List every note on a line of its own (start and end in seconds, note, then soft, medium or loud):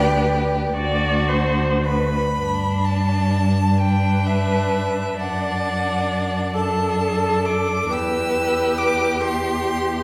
0.00 0.74 D2 medium
0.00 0.75 G4 medium
0.00 0.62 B4 medium
0.00 0.74 D5 loud
0.73 2.14 D2 medium
0.73 2.16 F#4 medium
0.73 1.30 D5 medium
1.28 1.88 C5 medium
1.85 2.38 B4 medium
1.85 2.87 B5 medium
2.37 5.14 G2 medium
2.37 3.75 D4 medium
2.85 3.81 A5 medium
3.79 5.15 D4 medium
3.79 5.14 B4 medium
3.79 4.28 G5 medium
4.26 5.21 E5 medium
5.17 7.86 F#2 medium
5.17 6.52 D4 medium
5.17 6.56 D5 medium
5.17 6.55 F#5 medium
6.54 7.92 D4 medium
6.54 7.89 A4 medium
6.54 7.47 A5 medium
7.45 7.94 D6 medium
7.90 10.03 E2 medium
7.90 10.03 G4 medium
7.90 9.23 B4 medium
7.90 8.80 E6 medium
8.78 9.22 D6 medium
9.21 10.03 G4 medium
9.21 10.03 C6 medium